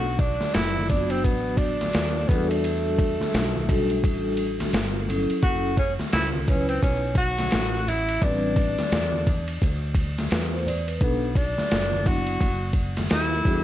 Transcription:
Already playing: B1 F#3 B3 D4 F#4 A4
0.06 shaker
0.19 D4, kick, ride, shaker
0.41 muted fretless electric bass stroke, snare, high conga, shaker
0.54 F#1 E4, snare, hi-hat pedal, ride, low conga, shaker
0.76 high conga, shaker
0.89 F#3 B3 D4 F4, kick, ride, high conga, low conga, shaker
0.97 F#4
1.10 C4, ride, shaker
1.24 A1 B3, kick, ride, shaker
1.46 shaker
1.57 D4, kick, ride, shaker
1.81 snare, ride, high conga, shaker
1.93 D#2, snare, hi-hat pedal, ride, shaker
2.16 shaker
2.28 E2 G3 B3 D4 F#4 A4, kick, ride, low conga, shaker
2.49 A3, ride, shaker
2.63 ride, shaker
2.84 shaker
2.98 kick, ride, shaker
3.20 muted fretless electric bass stroke, snare, high conga, shaker
3.34 B1, snare, hi-hat pedal, ride, low conga, shaker
3.55 high conga, shaker
3.69 G3 D4 F#4 A4, kick, ride, high conga, low conga, shaker
3.90 ride, shaker
4.04 A1, kick, ride, shaker
4.25 shaker
4.37 ride, shaker
4.60 snare, ride, high conga, shaker
4.73 G1, snare, hi-hat pedal, ride, shaker
4.95 shaker
5.08 F#3 C#4 E4 A4, ride, low conga, shaker
5.29 muted fretless electric bass stroke, ride, shaker
5.42 F#1 F#3 C#4 E4 F#4, kick, ride, shaker
5.64 shaker
5.77 C#4, kick, ride, shaker
5.99 muted fretless electric bass stroke, snare, high conga, shaker
6.13 C#2 E4, snare, hi-hat pedal, ride, low conga, shaker
6.33 high conga, shaker
6.47 F#3 C#4 E4 B4, kick, ride, high conga, low conga, shaker
6.69 C4, ride, shaker
6.83 B1 C#4, kick, ride, shaker
7.04 shaker
7.15 F#4, kick, ride, shaker
7.38 snare, ride, high conga, shaker
7.51 A1, snare, hi-hat pedal, ride, shaker
7.75 shaker
7.88 E4, ride, low conga, shaker
8.08 ride, shaker
8.22 A1 G3 C4 D4 B4, kick, ride, shaker
8.43 shaker
8.56 kick, ride, shaker
8.78 muted fretless electric bass stroke, snare, ride, high conga, shaker
8.92 E2, snare, hi-hat pedal, ride, low conga, shaker
9.12 high conga, shaker
9.27 kick, ride, high conga, low conga, shaker
9.47 ride, shaker
9.61 D2, kick, ride, shaker
9.82 shaker
9.95 kick, ride, shaker
10.18 snare, ride, high conga, shaker
10.31 E2 B4, snare, hi-hat pedal, ride, shaker
10.53 C5, shaker
10.66 D5, ride, low conga, shaker
10.87 B4, ride, shaker
11.01 B1 F#3 B3 D4 A4, kick, ride, shaker
11.22 shaker
11.35 D4, kick, ride, shaker
11.58 snare, high conga, shaker
11.71 F#1, snare, hi-hat pedal, ride, low conga, shaker
11.92 high conga, shaker
12.05 F#3 B3 D4 E4 F#4, kick, ride, high conga, low conga, shaker
12.27 ride, shaker
12.41 F#1, kick, ride, shaker
12.62 shaker
12.73 kick, ride, shaker
12.97 snare, ride, high conga, shaker
13.10 D#2 E4, snare, hi-hat pedal, ride, shaker
13.33 shaker
13.45 E2 G3 D4 F#4 G#4, kick, ride, low conga, shaker
13.53 A4

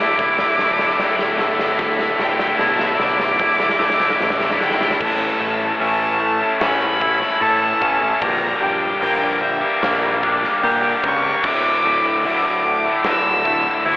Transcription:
Already playing: D1 D2 D3 E4 D6
0.02 A3
0.07 D2 A2 E4
0.11 D2 A3
0.15 D1 A2 A3 E4, kick
0.19 D2 A2, snare
0.24 A3 E4
0.29 D2 A2 E4
0.34 D2 A3
0.38 A2 A3 E4, snare
0.45 D2 A2 E4
0.49 A2 A3
0.53 D2 A3 E4
0.58 D1 D2, snare
0.62 A2 A3 E4
0.68 D2 A2 A3 E4
0.75 D2 A2 E4
0.79 A3, snare
0.84 D2 A2 A3 E4
0.92 D2 A2 A3 E4
0.98 D1 D2 A2 A3 E4, snare
1.07 D2 A2 A3 E4
1.15 D2 A2 A3 E4
1.19 snare
1.23 D2 A2 A3 E4
1.31 D2 A2 A3 E4
1.38 G1 D2 A2 D3 A3 E4, snare
1.47 D2 A2 A3 E4
1.54 D2 A2 A3 E4
1.59 D2 A2 A3 E4, snare
1.70 D2 A2 A3 E4
1.78 D1 D2 A2 A3 E4, kick, snare
1.86 D2 A2 A3 E4
1.93 D2 A2 A3 E4
1.99 D2 A2 A3 E4, snare
2.09 D2 A2 A3 E4
2.17 D1 D2 A2 D3 A3 E4 G5, snare
2.24 D2 A2 A3 E4
2.32 D2 A2 A3 E4
2.39 D2 A2 A3 E4, snare
2.47 D2 A2 A3 E4
2.54 D2 A2 A3 E4 A5
2.59 B1 D2, snare
2.63 A2 A3 E4
2.71 D2 A2 A3 E4
2.77 D2 A2 A3 E4, snare
2.84 D2 A2 A3 E4
2.93 D2 A2 A3 E4 D6
2.99 B1 D2 A2 D3 A3 E4, snare
3.08 D2 A2 A3 E4
3.15 D2 A2 A3 E4
3.20 D2, snare
3.24 A2 A3 E4
3.32 D2 A2 A3 E4
3.39 D1 D2 A2 A3 E4, kick, snare
3.46 D2 A2 A3 E4
3.55 D2 A2 A3 E4
3.60 D2 A2 A3 E4, snare
3.70 D2 A2 A3 E4, snare
3.77 D1 D2 A2 A3 E4, snare
3.84 D2 A2 A3 E4
3.90 D2 A2 A3, snare
3.94 E4
4.00 D2 A2 A3 E4, snare
4.07 D2 A2 A3 E4, snare
4.15 D2 A2 A3 E4
4.20 A1 D2 A3 E4, snare
4.24 A2
4.30 D2 A2 A3 E4, snare
4.37 D2 A2 A3 E4, snare
4.46 D2 A2 A3 E4
4.50 D2 A3, snare
4.55 A2 E4
4.59 G#1 D2 A2 D3 A3 E4 G5, snare
4.69 D2 A2 A3 E4, snare
4.76 D2 A2 A3 E4
4.81 D2 A3 E4, snare
4.86 A2
4.91 D2 A2 A3 E4, snare
4.99 A1 A2 E3 A3 C#4 E4 A4 A5, kick, crash
5.39 A1 A3 C#4 E4 A4
5.79 A1 A2 E3 A3 C#4 E4 A4 A5, open hi-hat
6.00 A3 C#4 E4 A4
6.20 A3, muted overdriven electric guitar stroke
6.39 A3 C#4 E4 A4
6.60 A1 C#4 B5, snare, open hi-hat
7.00 A3 C#4 E4 A4, kick
7.22 snare
7.40 A2 E3 A3 C#4 E4 A4 A5, open hi-hat
7.60 A3 C#4 E4 A4
7.81 A1 A3 C#4 E4 A4, kick
8.00 A3 C#4 E4 A4
8.20 A#1 G2 D3 G3 A#3 D4 G4 A#5, kick, open hi-hat
8.60 A#1 G3 A#3 D4 G4 G5
9.01 A#1 G2 D3 G3 A#3 D4 G4, open hi-hat
9.21 G3 A#3 D4 G4
9.42 G3 E5, muted overdriven electric guitar stroke
9.61 G3 A#3 D4 G4
9.82 A#1 A#3, snare, open hi-hat
10.22 G3 A#3 D4 G4, kick
10.44 snare
10.62 G2 A#2 D3 G3 A#3 D4 G4, open hi-hat
10.82 G3 A#3 D4 G4
11.02 C#2 G3 A#3 D4 G4 C#6, kick
11.22 G3 A#3 D4 G4
11.43 D1 D2 A2 D3 A3 E4 D6, kick, crash
11.83 D1 A2 D3 A3 E4
12.24 D1 D2 A2 D3 A3 E4 D6, open hi-hat
12.44 D3 A3 E4
12.65 A2, muted overdriven electric guitar stroke
12.84 D3 A3 E4
13.05 D1 D3 E6, snare, open hi-hat
13.45 A2 D3 A3 E4, kick
13.85 D2 A2 D3 A3 E4, open hi-hat
13.90 C#6

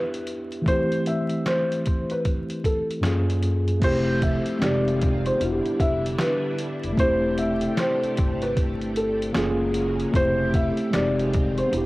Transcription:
Already playing: B3 D4 E4 G4 B4
0.14 closed hi-hat
0.27 closed hi-hat
0.52 closed hi-hat
0.62 E3 A3
0.66 C4 E4 C5, kick, closed hi-hat
0.72 G4
0.92 closed hi-hat
1.06 E5, closed hi-hat
1.29 closed hi-hat
1.46 C5, finger snap, snare, closed hi-hat
1.72 closed hi-hat
1.85 kick, closed hi-hat
2.10 B4, closed hi-hat
2.25 kick, closed hi-hat
2.50 closed hi-hat
2.64 A4, kick, closed hi-hat
2.90 closed hi-hat
3.01 F#2 A#3 C#4, finger snap, snare
3.05 F4 G#4, closed hi-hat
3.30 closed hi-hat
3.43 closed hi-hat
3.68 closed hi-hat
3.80 F1 F3 A3 C4 E4 G4, kick, closed hi-hat, crash
3.84 G4 C5
4.22 E5, kick, closed hi-hat
4.46 closed hi-hat
4.59 F1 D#3 G#3 C4 D#4 F4 D5, finger snap, snare, closed hi-hat
4.64 G4
4.88 closed hi-hat
5.02 kick, closed hi-hat
5.26 C5, closed hi-hat
5.36 B3 D4 E4
5.40 E1 D3 G3 D4 E4, closed hi-hat
5.46 F#4
5.52 G4
5.65 muted upright bass stroke, closed hi-hat
5.80 F1 E5, kick, closed hi-hat
6.06 closed hi-hat
6.19 B4, finger snap, snare, closed hi-hat
6.58 closed hi-hat
6.83 F1, closed hi-hat
6.93 A3 C4
6.98 E1 C3 A3 E4 G4 C5, kick, closed hi-hat
7.03 G4
7.38 E5, closed hi-hat
7.61 closed hi-hat
7.77 C5, finger snap, snare, closed hi-hat
8.02 muted upright bass stroke, closed hi-hat
8.17 G1, kick, closed hi-hat
8.42 B4, closed hi-hat
8.57 kick, closed hi-hat
8.82 closed hi-hat
8.96 A4, closed hi-hat
9.22 closed hi-hat
9.33 F#1 C#3 F#3 G#3 A#3 C#4 F4, finger snap, snare, closed hi-hat
9.38 G#4
9.74 closed hi-hat
10.00 closed hi-hat
10.12 F1 A3 C4 E4 G4 C5, kick, closed hi-hat
10.17 G4
10.54 E5, kick, closed hi-hat
10.77 closed hi-hat
10.91 F1 D#3 G#3 C4 D#4 F4 D5, finger snap, snare, closed hi-hat
10.96 G4
11.19 closed hi-hat
11.34 kick, closed hi-hat
11.58 C5, closed hi-hat
11.67 B3 D4
11.72 E1 D3 G3 D4 E4, closed hi-hat
11.78 G4

